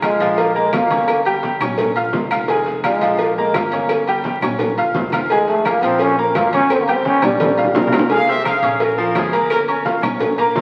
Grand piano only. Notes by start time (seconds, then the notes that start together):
0.03 F4 F5 F6
0.21 F3 F4 F5
0.55 A#3 A#4 A#5
0.73 F4 F5 F6
0.91 C#4 C#5 C#6
1.26 G3 G4 G5
1.61 C#4 C#5 C#6
1.96 F4 F5 F6
2.31 F4 F5 F6
2.49 G#3 G#4 G#5
2.85 F4 F5 F6
3.02 F3 F4 F5
3.38 A#3 A#4 A#5
3.55 F4 F5 F6
3.73 C#4 C#5 C#6
4.08 G3 G4 G5
4.43 C#4 C#5 C#6
4.78 F4 F5 F6
5.13 F4 F5 F6
5.31 G#3 G#4 G#5
5.66 F4 F5 F6
5.84 F3 F4 F5
6.18 A#3 A#4 A#5
6.36 F4 F5 F6
6.54 C#4 C#5 C#6
6.88 G3 G4 G5
7.23 C#4 C#5 C#6
7.58 F4 F5 F6
7.93 F4 F5 F6
8.11 G#3 G#4 G#5
8.29 C4 C5 C6
8.63 C#4 C#5 C#6
8.98 F3 F4 F5
9.32 A#3 A#4 A#5
9.68 C#4 C#5 C#6
9.85 F4 F5 F6
10.02 C#4 C#5 C#6
10.38 A#3 A#4 A#5